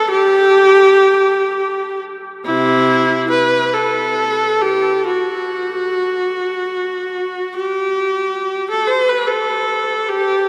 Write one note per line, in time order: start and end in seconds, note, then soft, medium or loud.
0.10 2.01 G4 loud
2.45 3.26 C3 medium
2.45 3.26 E4 medium
3.30 3.73 B4 medium
3.74 4.63 A4 medium
4.62 5.08 G4 medium
5.08 7.53 F#4 medium
7.57 8.65 G4 medium
8.70 8.90 A4 medium
8.88 9.08 C5 medium
9.09 9.29 B4 medium
9.27 10.08 A4 medium
10.09 10.48 G4 medium